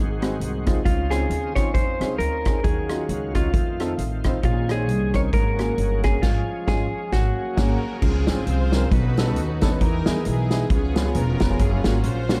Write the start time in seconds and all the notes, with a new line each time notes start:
Already playing: G#1 G#2 D#3 G#3 C4 G#4
0.01 F#4
0.22 G#3 C4 D#4 F#4, cross-stick, closed hi-hat
0.40 C2, closed hi-hat
0.66 G#3 C4 D#4 F4, kick, cross-stick, closed hi-hat
0.84 C#2 C#3 C4 C#4 D#4 F4, kick, closed hi-hat
1.11 C4 C#4 D#4 F4 G#4, cross-stick, closed hi-hat
1.30 D#2, closed hi-hat
1.55 C4 C#4 D#4 F4 C#5, kick, cross-stick, closed hi-hat
1.74 F2 C5, kick, closed hi-hat
2.00 C#2 C4 C#4 D#4 G#4, cross-stick, closed hi-hat
2.18 D2 A#4, closed hi-hat
2.45 C4 C#4 D#4 G#4, kick, cross-stick, closed hi-hat
2.63 D#2 D#3 F#3 C#4 F4 G#4, kick, closed hi-hat
2.90 C#4 D#4 F4 F#4, cross-stick, closed hi-hat
3.09 C#2, closed hi-hat
3.35 C#4 D#4 F4 F#4, kick, cross-stick, closed hi-hat
3.53 F2 D#3 A3 C4 F4, kick, closed hi-hat
3.80 C4 D#4 F4 A4, cross-stick, closed hi-hat
3.98 A1, closed hi-hat
4.24 C4 D#4 F4 C5, kick, cross-stick, closed hi-hat
4.42 A#1 A#2 D#3 C4 C#4 F4 G4, kick, closed hi-hat
4.48 G#4
4.69 C4 C#4 D#4 G#4, cross-stick, closed hi-hat
4.89 C2, closed hi-hat
5.14 C4 C#4 D#4 A#4 C#5, kick, cross-stick, closed hi-hat
5.33 G#1 G#2 F#3 A#3 C#4 G#4 A#4, kick, closed hi-hat
5.59 A#3 C#4 F#4 G#4, cross-stick, closed hi-hat
5.78 G1, closed hi-hat
6.03 A#3 C#4 F#4 G#4, kick, cross-stick, closed hi-hat
6.22 G#1 F3 G#3 C#4 F4 F#4, kick, snare, crash
6.29 G#4
6.67 G#1 G#3 C#4 F4 G#4, kick, snare
7.12 G#1 F#3 A#3 C#4 F#4 G4, kick, snare
7.20 G#4
7.57 G#1 A#3 C#4 F#4 G#4 A#4, kick, snare, crash
8.01 C#2 C#3 F3 C4 F4 G#4, kick, crash
8.27 G#1 C4 C#4 F4 G#4, snare, closed hi-hat
8.46 C2 F4 G#4 C5, closed hi-hat
8.72 C4 C#4 F4 A#4, snare, closed hi-hat
8.92 B1 B2 D#3 B3 C#4 D#4 F#4 A4 B4, kick, closed hi-hat
9.17 B3 C#4 D#4 A4, snare, closed hi-hat
9.27 B3 C#4 D#4 A4
9.36 D#2, closed hi-hat
9.61 B3 C#4 D#4 A4, kick, snare, closed hi-hat
9.71 B3 C#4 D#4 B4
9.80 E2 E3 B3 D#4 G4 A#4, kick, closed hi-hat
9.85 G#4
10.06 D#2 B3 D#4 E4 G#4, snare, closed hi-hat
10.25 B1 B3 D#4 G#4, closed hi-hat
10.50 B3 D#4 E4 G#4, snare, closed hi-hat
10.70 C#2 C#3 F3 B3 C#4 F4 G#4, kick, closed hi-hat
10.94 B3 C#4 F4 G#4, snare, closed hi-hat
11.05 B3 C#4 F4 G#4
11.15 E1 F4 A#4, closed hi-hat
11.40 F1 B3 C#4 F4 B4, kick, snare, closed hi-hat
11.50 B3 C#4 F4 G#4
11.59 F#1 F#3 C#4 F4 G#4, kick, closed hi-hat
11.65 A#4
11.84 G#1 A#3 C#4 F4 F#4, snare, closed hi-hat
12.03 A#1 F4 C5, closed hi-hat
12.29 A#3 C#4 F4 F#4, snare, closed hi-hat